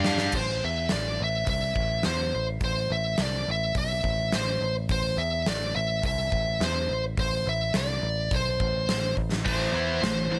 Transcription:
Already playing: picked electric bass G2, distorted electric guitar G3 D4 G4, lead electric guitar F5
0.04 snare
0.18 snare
0.32 picked electric bass A1, lead electric guitar C5, kick, crash
0.64 picked electric bass E2, lead electric guitar E5
0.89 picked electric bass A1, lead electric guitar D5, snare, open hi-hat
1.20 picked electric bass A1, lead electric guitar E5
1.46 picked electric bass C2, lead electric guitar E5, kick, open hi-hat
1.75 picked electric bass A1, kick
2.03 picked electric bass E2, lead electric guitar C5, snare, open hi-hat
2.35 picked electric bass A1
2.61 picked electric bass A1, lead electric guitar C5, kick, open hi-hat
2.90 picked electric bass A1, lead electric guitar E5
3.18 picked electric bass C2, snare, open hi-hat
3.23 lead electric guitar D5
3.47 picked electric bass A1
3.51 lead electric guitar E5
3.75 picked electric bass B1, lead electric guitar E5, kick, open hi-hat
4.03 picked electric bass A1, kick
4.32 lead electric guitar C5, snare, open hi-hat
4.61 picked electric bass A1
4.89 picked electric bass A1, lead electric guitar C5, kick, open hi-hat
5.17 picked electric bass E2, lead electric guitar E5
5.46 picked electric bass A1, lead electric guitar D5, snare, open hi-hat
5.76 picked electric bass A1, lead electric guitar E5
6.03 picked electric bass C2, lead electric guitar E5, kick, open hi-hat
6.32 picked electric bass A1, kick
6.60 picked electric bass E2, lead electric guitar C5, snare, open hi-hat
6.88 picked electric bass A1
7.17 picked electric bass A1, lead electric guitar C5, kick, open hi-hat
7.46 picked electric bass A1, lead electric guitar E5
7.74 picked electric bass C2, lead electric guitar D5, snare, open hi-hat
8.02 picked electric bass A1
8.31 picked electric bass B1, lead electric guitar C5, kick, open hi-hat
8.60 picked electric bass A1, kick
8.89 snare, open hi-hat
9.17 picked electric bass A1, kick
9.32 snare
9.45 picked electric bass A1, distorted electric guitar A2 E3 A3, lead electric guitar C5, kick, open hi-hat, splash
9.73 picked electric bass E2, distorted electric guitar E3 B3 E4
10.01 picked electric bass A1, distorted electric guitar A2 E3, snare, open hi-hat
10.31 picked electric bass A1, distorted electric guitar A2 E3

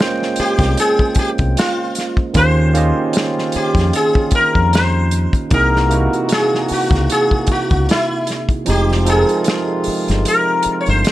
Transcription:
Already playing: horn section C#3 C4 G5, tine electric piano G#3 A#3 C#4 F4 G#4 C5 D#5, sitar C5
0.01 snare
0.22 snare
0.36 sitar G4, muted fingered electric bass stroke, closed hi-hat
0.59 fingered electric bass C2, kick, snare, closed hi-hat
0.77 sitar G#4, closed hi-hat
0.99 kick
1.15 muted fingered electric bass stroke, kick, closed hi-hat
1.19 sitar G4
1.38 fingered electric bass C2, kick, closed hi-hat
1.57 sitar F4, snare, closed hi-hat
1.95 snare, closed hi-hat
2.17 kick
2.33 fingered electric bass D#2, horn section C#3 C4 F4, tine electric piano D#3 A#3 C#4 F4 G4, sitar C5, kick, closed hi-hat
2.38 tine electric piano C5
2.73 tine electric piano D#3 A#3 C#4 F4 G4, closed hi-hat
2.78 tine electric piano D#5
3.13 snare, closed hi-hat
3.38 snare
3.52 sitar G4, muted fingered electric bass stroke, closed hi-hat
3.75 fingered electric bass F2, kick, snare, closed hi-hat
3.93 sitar G#4, closed hi-hat
4.15 kick
4.31 muted fingered electric bass stroke, kick, closed hi-hat
4.35 sitar A#4
4.55 fingered electric bass F2, kick
4.73 sitar C5, snare, closed hi-hat
5.11 closed hi-hat
5.33 kick, closed hi-hat
5.50 fingered electric bass C2, tine electric piano C3 A#3 D#4 E4, horn section E3 A#3 F#4, sitar A#4, kick, closed hi-hat
5.54 tine electric piano G#4
5.76 snare
5.89 tine electric piano C3 A#3 D#4 E4, closed hi-hat
5.94 tine electric piano F#4
6.13 closed hi-hat
6.29 sitar G#4, snare, closed hi-hat
6.55 snare
6.68 sitar F#4, muted fingered electric bass stroke, open hi-hat
6.91 fingered electric bass C#2, kick, snare, closed hi-hat
7.10 sitar G#4, closed hi-hat
7.31 kick
7.47 muted fingered electric bass stroke, kick, closed hi-hat
7.51 sitar F#4
7.70 fingered electric bass C#2, kick, closed hi-hat
7.89 sitar E4, snare, closed hi-hat
8.27 snare, closed hi-hat
8.49 kick, closed hi-hat
8.65 fingered electric bass F1, horn section C3 G#3 F4, tine electric piano F3 C4 D#4 G4, closed hi-hat
8.70 tine electric piano G#3, sitar G4
8.92 snare
9.05 tine electric piano F3 C4 D#4 G5, closed hi-hat
9.09 sitar G#4, tine electric piano A4
9.16 tine electric piano A#4
9.29 closed hi-hat
9.44 snare, closed hi-hat
9.84 muted fingered electric bass stroke, open hi-hat
10.08 fingered electric bass G1, snare, closed hi-hat
10.25 sitar A#4, closed hi-hat
10.63 muted fingered electric bass stroke, closed hi-hat
10.81 sitar C#5
10.86 fingered electric bass G1, sitar C5, closed hi-hat
11.05 snare, closed hi-hat

